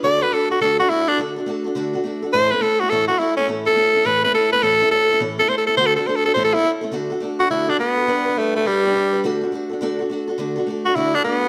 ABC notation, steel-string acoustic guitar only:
X:1
M:4/4
L:1/8
Q:"Swing" 1/4=209
K:D
V:1 name="Steel-string acoustic guitar"
[D,A,DFA] [DFA] [A,DFA] [DFA] [D,A,DFA] [DFA] [A,DFA] [DFA] | [D,A,DFA] [DFA] [A,DFA] [DFA] [D,A,DFA] [DFA] [A,DFA] [DFA] | [A,,E,A,CEA] [A,CEA] [A,CEA] [A,CEA] [A,,E,A,CEA] [A,CEA] [A,CEA] [A,CEA] | [A,,E,A,CEA] [A,CEA] [A,CEA] [A,CEA] [A,,E,A,CEA] [A,CEA] [A,CEA] [A,CEA] |
[A,,E,A,CEA] [A,CEA] [A,C] [A,CEA] [A,,E,A,CEA] [A,CEA] [A,CEA] [A,CEA] | [D,A,DFA] [DFA] [A,DFA] [DFA] [A,,E,A,CEA] [A,CEA] [A,CEA] [A,CEA] | [D,A,DFA] [DFA] [A,DFA] [DFA] [D,A,DFA] [DFA] [A,DFA] [DFA] | [G,DGB] [DGB] [G,DGB] [DGB] [G,DGB] [DGB] [G,DGB] [DGB] |
[D,A,DFA] [DFA] [A,DFA] [DFA] [D,A,DFA] [DFA] [A,DFA] [DFA] | [D,A,DFA] [DFA] [A,DFA] [DFA] [D,A,DFA] [DFA] [A,DFA] [FA] |]